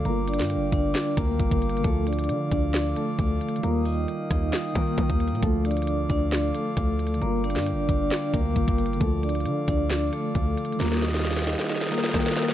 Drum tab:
HH |x-----------x--x--x--x--x-----------x-----------x-----------x-----------x-----------x---x---x---|x-----------x--x--x--x--x-----------x-----------x-----------x-----------x-----------x---x---x---|x-----------o-----------x-----------x-----------x-----------x-----------x-----------x---x---x---|x-----------x--x--x--x--x-----------x-----------x-----------x-----------x-----------x---x---x---|
SD |------------------o-----------------------------o-----------------------------------------------|------------------------------------------------o-----------------------------------------------|------------------------------------r-----------o-----------------------------------------------|------------------------------------------------o-----------------------------------------------|
BD |------------------------------------o-----------------------o-----------o-----o-----------------|o-----------------------------------o-----------------------------------o-----------------------|------------------------------------o-----------------------o-----------o-----o-----------------|o-----------------------------------o-----------------------------------o-----------------------|

HH |x-----------x--x--x--x--x-----------x-----------x-----------x-----------x-----------x---x---x---|x-----------x--x--x--x--x-----------x-----------x-----------x-----------x-----------x---x---x---|x-----------o-----------x-----------x-----------x-----------x-----------x-----------x---x-------|
SD |------------------o-----------------------------o-----------------------------------------------|------------------------------------------------o-----------------------------------------------|o--o--o--o--o--o--o--o--o--o--o--o--o--o--o--o--o--o--o--o--o--o--o--o--o--o--o--o--o--o--o-----|
BD |------------------------------------o-----------------------o-----------o-----o-----------------|o-----------------------------------o-----------------------------------o-----------------------|------------------------------------------------------------------------o-----------------------|